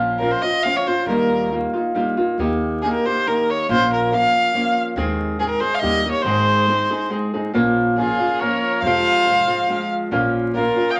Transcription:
Already playing: upright bass A#1, nylon-string guitar A#2 F3 C4 C#4 F4
0.19 nylon-string guitar F3 C4 C#4 F4, violin A#4
0.31 violin C5
0.42 nylon-string guitar C4 C#4 F4, violin D#5
0.63 nylon-string guitar F3 C4 C#4 F4, violin F5
0.76 violin C#5
0.87 nylon-string guitar C4 C#4 F4, violin C5
1.06 upright bass D#2, nylon-string guitar D#3 G3 A#3 D#4 F4, violin A#4
1.51 nylon-string guitar G3 A#3 D#4 F4
1.73 nylon-string guitar A#3 D#4 F4
1.94 nylon-string guitar G3 A#3 D#4 F4
2.17 nylon-string guitar A#3 D#4 F4
2.38 upright bass D#2, nylon-string guitar D#3 A#3 D#4 G4
2.82 nylon-string guitar D#3 A#3 D#4 G4, violin G#4
2.93 violin A#4
3.06 nylon-string guitar A#3 D#4 G4, violin C5
3.26 nylon-string guitar D#3 A#3 D#4 G4, violin A#4
3.50 violin C#5
3.68 upright bass A#1, nylon-string guitar A#2 F3 A#3 C#4 F4, violin C5
3.93 violin A#4
4.12 nylon-string guitar F3 A#3 C#4 F4, violin F5
4.54 nylon-string guitar F3 A#3 C#4 F4
4.96 upright bass D#2, nylon-string guitar D#3 G#3 C4 G#4
5.39 nylon-string guitar D#3 G#3 C4 G#4, violin G#4
5.49 violin A#4
5.60 nylon-string guitar G#3 C4 G#4, violin C5
5.74 violin F5
5.79 upright bass D#2, nylon-string guitar G3 A#3 D#4, violin D#5
5.83 nylon-string guitar G4
6.03 nylon-string guitar A#3 D#4 G4
6.11 violin C#5
6.22 upright bass G#1, nylon-string guitar G#2 D#3 G#3 C4, violin C5
6.26 nylon-string guitar D#4 G#4
6.69 nylon-string guitar G#3 C4 D#4 G#4
6.90 nylon-string guitar G#3 C4 D#4 G#4
7.10 nylon-string guitar G#3 C4 D#4 G#4
7.34 nylon-string guitar G#3 C4 D#4 G#4
7.53 upright bass A#1, nylon-string guitar A#2 F3 A#3 C#4 F4
7.98 nylon-string guitar F3 A#3 C#4 F4, trumpet F4, violin G#4
8.20 nylon-string guitar A#3 C#4 F4
8.40 nylon-string guitar F3 A#3 C#4 F4, trumpet A#4, violin C#5
8.82 upright bass F1, nylon-string guitar F2 C3 F3 G#3 C4 F4, trumpet C5, violin F5
9.28 nylon-string guitar F3 G#3 C4 F4
9.47 nylon-string guitar F3 G#3 C4 F4
9.69 nylon-string guitar F3 G#3 C4 F4
10.11 upright bass A#1, nylon-string guitar A#2 F3 A#3 C#4 F4
10.55 nylon-string guitar F3 A#3 C#4 F4, trumpet F4, violin A#4
10.76 nylon-string guitar A#3 C#4 F4
10.91 trumpet D#5, violin G5
10.95 violin F5

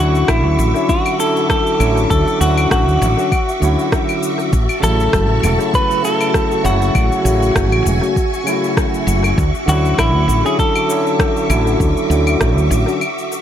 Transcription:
Already playing: fretless electric bass D2, tine electric piano D3 F#3, string machine F#4 E5 C#6 D6
0.00 tine electric piano C#4 E4, clean electric guitar F#4
0.15 cabasa
0.28 fretless electric bass A1, clean electric guitar E4, kick, cross-stick, cabasa, claves
0.45 fretless electric bass D2
0.59 fretless electric bass A1, cabasa
0.74 tine electric piano D3 F#3 C#4 E4, cabasa
0.89 clean electric guitar F#4, kick, cabasa
1.06 cabasa, claves
1.19 tine electric piano D3 F#3 C#4 E4, clean electric guitar A4, cabasa
1.37 cabasa
1.50 clean electric guitar A4, kick, cross-stick, cabasa
1.67 cabasa
1.79 fretless electric bass A1, tine electric piano D3 F#3 C#4 E4, cabasa, claves
1.97 cabasa
2.10 fretless electric bass D2, clean electric guitar A4, kick, cabasa
2.27 cabasa
2.39 fretless electric bass D2, tine electric piano D3 F#3 C#4, clean electric guitar F#4, cabasa
2.43 tine electric piano E4
2.58 cabasa, claves
2.71 fretless electric bass A1, clean electric guitar F#4, kick, cross-stick, cabasa
2.88 fretless electric bass D2, cabasa
3.02 fretless electric bass A1, cabasa
3.17 tine electric piano D3 F#3 C#4 F#4, cabasa
3.32 kick, cabasa, claves
3.49 cabasa
3.60 fretless electric bass D2, tine electric piano D3 F#3 C#4, cabasa
3.64 tine electric piano E4
3.79 cabasa
3.92 kick, cross-stick, cabasa
4.09 cabasa, claves
4.23 cabasa
4.39 cabasa
4.53 fretless electric bass A1, string machine A5 C#6, kick, cabasa
4.69 cabasa, claves
4.80 fretless electric bass A1, tine electric piano C#3 F#3 A3, clean electric guitar A4, cabasa
4.85 tine electric piano E4
5.00 cabasa
5.13 fretless electric bass F#1, kick, cross-stick, cabasa
5.30 fretless electric bass A1
5.43 fretless electric bass E1, cabasa, claves
5.58 tine electric piano C#3 F#3 A3 E4, cabasa
5.74 clean electric guitar B4, kick, cabasa
5.91 cabasa
6.03 tine electric piano C#3 F#3 A3 E4, clean electric guitar A4, cabasa
6.21 cabasa, claves
6.34 kick, cross-stick, cabasa
6.51 cabasa
6.63 fretless electric bass F#1, tine electric piano C#3 F#3 A3 E4, clean electric guitar F#4, cabasa
6.82 cabasa
6.95 fretless electric bass A1, string machine G#5, kick, cabasa, claves
7.12 cabasa
7.23 fretless electric bass A1, tine electric piano C#3 F#3 A3, cabasa
7.27 tine electric piano E4
7.42 cabasa
7.56 fretless electric bass F#1, kick, cross-stick, cabasa
7.72 fretless electric bass A1, claves
7.86 fretless electric bass E1, cabasa
8.01 tine electric piano C#3 F#3 A3 F#4, cabasa
8.16 kick, cabasa
8.34 cabasa
8.44 tine electric piano C#3 F#3 A3, cabasa, claves
8.49 tine electric piano E4
8.64 cabasa
8.77 kick, cross-stick, cabasa
8.94 cabasa
9.07 fretless electric bass F#1, cabasa
9.24 cabasa, claves
9.37 fretless electric bass D2, string machine E5 D6, kick, cabasa
9.55 cabasa
9.66 fretless electric bass D2, tine electric piano D3 F#3 C#4, clean electric guitar F#4, cabasa
9.70 tine electric piano E4
9.85 cabasa
9.98 fretless electric bass A1, clean electric guitar E4, kick, cross-stick, cabasa, claves
10.14 fretless electric bass D2
10.28 fretless electric bass A1, cabasa
10.44 tine electric piano D3 F#3 C#4 E4, clean electric guitar G#4, cabasa
10.59 clean electric guitar A4, kick, cabasa
10.76 cabasa, claves
10.88 tine electric piano D3 F#3 C#4 E4, cabasa
11.07 cabasa
11.19 kick, cross-stick, cabasa
11.37 cabasa
11.48 fretless electric bass A1, tine electric piano D3 F#3 C#4 E4, cabasa, claves
11.67 cabasa
11.80 fretless electric bass D2, kick, cabasa
11.97 cabasa
12.08 fretless electric bass D2, tine electric piano D3 F#3 C#4, cabasa
12.12 tine electric piano E4
12.27 cabasa, claves
12.41 fretless electric bass A1, kick, cross-stick, cabasa
12.57 fretless electric bass D2, cabasa
12.71 fretless electric bass A1, cabasa
12.86 tine electric piano D3 F#3 C#4 F#4, cabasa
13.01 cabasa, claves
13.18 cabasa
13.32 cabasa

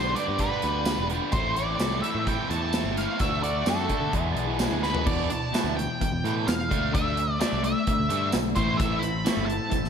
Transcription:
Already playing: picked electric bass B1, overdriven electric guitar G2 D3 G3 B3 D4 G4, lead electric guitar C5
0.14 overdriven electric guitar G2 D3 G3 B3 D4 G4, lead electric guitar D5, closed hi-hat
0.28 picked electric bass G2
0.37 overdriven electric guitar G2 D3 G3 B3 D4 G4, lead electric guitar B4, kick, closed hi-hat
0.61 picked electric bass D2, overdriven electric guitar G2 D3 G3 B3 D4 G4, closed hi-hat
0.85 overdriven electric guitar G2 D3 G3 B3 D4 G4, snare, closed hi-hat, tambourine
0.98 picked electric bass E1
1.08 overdriven electric guitar G2 D3 G3 B3 D4 G4, closed hi-hat
1.32 picked electric bass A1, overdriven electric guitar A2 E3 A3 C4 E4 A4, lead electric guitar C5, kick, closed hi-hat
1.56 overdriven electric guitar A2 E3 A3 C4 E4 A4, lead electric guitar D5, closed hi-hat
1.79 picked electric bass C2, overdriven electric guitar A2 E3 A3 C4 E4 A4, snare, closed hi-hat, tambourine
2.01 overdriven electric guitar A2 E3 A3 C4 E4, lead electric guitar E5, closed hi-hat
2.06 overdriven electric guitar A4
2.15 picked electric bass A2
2.25 overdriven electric guitar A2 E3 A3 C4 E4, lead electric guitar G5, kick, closed hi-hat
2.29 overdriven electric guitar A4
2.49 picked electric bass E2, overdriven electric guitar A2 E3 A3 C4 E4 A4, lead electric guitar A5, closed hi-hat
2.73 overdriven electric guitar A2 E3 A3 C4 E4 A4, snare, closed hi-hat, tambourine
2.84 picked electric bass G1
2.97 overdriven electric guitar A2 E3 A3 C4 E4 A4, lead electric guitar F5, closed hi-hat
3.19 picked electric bass D2, overdriven electric guitar D3 A3 D4 F#4, lead electric guitar E5, kick, closed hi-hat
3.43 overdriven electric guitar D3 A3 D4 F#4, lead electric guitar D5, closed hi-hat
3.65 picked electric bass F#2, overdriven electric guitar D3 A3 D4 F#4, lead electric guitar A4, snare, closed hi-hat, tambourine
3.89 overdriven electric guitar D3 A3 D4 F#4, kick, closed hi-hat
4.00 picked electric bass D3
4.12 overdriven electric guitar E2 B2 E3 G#3 B3 G#4, picked electric bass E2, electric slide guitar E5, kick, closed hi-hat
4.32 picked electric bass B1, overdriven electric guitar E2 B2 E3, electric slide guitar D5
4.37 overdriven electric guitar G#3 B3 G#4, closed hi-hat
4.47 electric slide guitar E4
4.58 overdriven electric guitar E2 B2 E3 G#3 B3 G#4, snare, closed hi-hat, tambourine
4.63 electric slide guitar E4
4.71 picked electric bass D2
4.81 overdriven electric guitar E2 B2 E3 G#3 B3 G#4, lead electric guitar B4, snare
4.95 floor tom
5.05 overdriven electric guitar E2 B2 E3, picked electric bass E2, lead electric guitar D5, kick, crash
5.28 overdriven electric guitar E2 B2, lead electric guitar A5, closed hi-hat
5.52 overdriven electric guitar E2 B2 E3, snare, closed hi-hat, tambourine
5.64 picked electric bass D2
5.77 overdriven electric guitar E2 B2, lead electric guitar G5, closed hi-hat
6.00 overdriven electric guitar E2 B2, kick, closed hi-hat
6.12 picked electric bass E2
6.24 overdriven electric guitar E2 B2 E3, picked electric bass A2, closed hi-hat
6.46 overdriven electric guitar E2 B2, picked electric bass E2, lead electric guitar F5, snare, closed hi-hat, tambourine
6.69 picked electric bass D2, overdriven electric guitar D3 A3 D4, kick, closed hi-hat
6.92 overdriven electric guitar D3 A3 D4, lead electric guitar E5, kick, closed hi-hat
7.17 overdriven electric guitar D3 A3, closed hi-hat
7.39 overdriven electric guitar D3 A3 D4, lead electric guitar D5, snare, closed hi-hat, tambourine
7.53 picked electric bass C2
7.63 overdriven electric guitar D3 A3, lead electric guitar E5, closed hi-hat
7.87 overdriven electric guitar D3 A3, kick, closed hi-hat
8.00 picked electric bass D2
8.09 picked electric bass G2, overdriven electric guitar D3 A3 D4, closed hi-hat
8.32 picked electric bass B1, overdriven electric guitar D3 A3, snare, closed hi-hat, tambourine
8.55 picked electric bass A1, overdriven electric guitar A2 E3 A3, lead electric guitar C5, kick, closed hi-hat
8.77 overdriven electric guitar A2 E3 A3, tonewheel organ C4 A4 E5, lead electric guitar E5, kick, closed hi-hat
8.99 overdriven electric guitar A2 E3, lead electric guitar B5, closed hi-hat
9.24 overdriven electric guitar A2 E3 A3, snare, closed hi-hat, tambourine
9.37 picked electric bass G1
9.46 overdriven electric guitar A2 E3, lead electric guitar A5, closed hi-hat
9.69 overdriven electric guitar A2 E3, kick, closed hi-hat
9.84 picked electric bass A1, snare

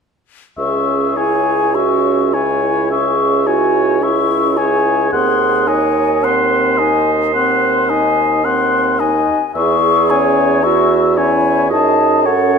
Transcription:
0.58 bassoon C#2, french horn C#4, clarinet G#4, oboe E5, flute C#6
1.17 french horn E4, oboe C#5, flute G#5
1.75 french horn C#4, clarinet F#4, oboe E5, flute C#6
2.33 clarinet E4, french horn E4, oboe C#5, flute G#5
2.90 french horn C#4, clarinet G#4, oboe E5, flute C#6
3.46 french horn E4, clarinet F#4, oboe C#5, flute G#5
4.01 french horn C#4, clarinet E4, oboe E5, flute C#6
4.57 french horn E4, clarinet G#4, oboe C#5, flute G#5
5.12 bassoon D#2, french horn C4, clarinet G#4, oboe F#5, flute C6
5.67 french horn D#4, clarinet C#5, oboe D#5, flute G#5
6.24 french horn C4, clarinet C5, oboe F#5, flute C6
6.78 french horn D#4, oboe D#5, flute G#5
7.35 french horn C4, oboe F#5, flute C6
7.90 french horn D#4, oboe D#5, flute G#5
8.45 french horn C4, oboe F#5, flute C6
9.00 french horn D#4, oboe D#5, flute G#5
9.55 bassoon E2, french horn E4, clarinet G#4, oboe E5, flute C#6
10.10 french horn C#4, oboe C#5, flute G#5
10.63 french horn E4, clarinet F#4, oboe E5, flute C#6
11.17 french horn C#4, clarinet E4, oboe C#5, flute G#5
11.70 bassoon F#2, french horn D#4, clarinet G#4, oboe D#5, flute A5
12.26 french horn C#4, clarinet A4, oboe C#5, flute F#5

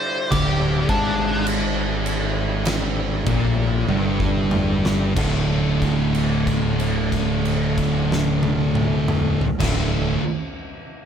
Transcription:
Already playing: tonewheel organ D3 G3 E4, lead electric guitar C5
0.31 fingered electric bass D1, distorted electric guitar D2, lead electric guitar G4, kick, crash
0.89 fingered electric bass G#1, distorted electric guitar G#2, lead electric guitar D4, kick, crash
1.47 crash
2.06 crash
2.65 snare, crash
3.26 fingered electric bass A#1, distorted electric guitar A#2, kick, crash
3.88 fingered electric bass G1, distorted electric guitar G2, high tom
4.20 kick
4.51 mid tom
4.85 snare
5.15 fingered electric bass D1, distorted electric guitar D2 A2 D3 A3, tonewheel organ D3 A3, kick, crash
5.19 distorted electric guitar F4
5.82 kick, crash
6.15 crash
6.47 kick, crash
6.80 crash
7.12 kick, crash
7.45 crash
7.78 kick, crash
8.12 snare
8.43 high tom
8.75 mid tom
9.08 mid tom
9.41 floor tom
9.59 fingered electric bass D1, distorted electric guitar D2 A2 D3 A3, tonewheel organ D3 A3 E5, kick, snare, crash
9.63 distorted electric guitar F4

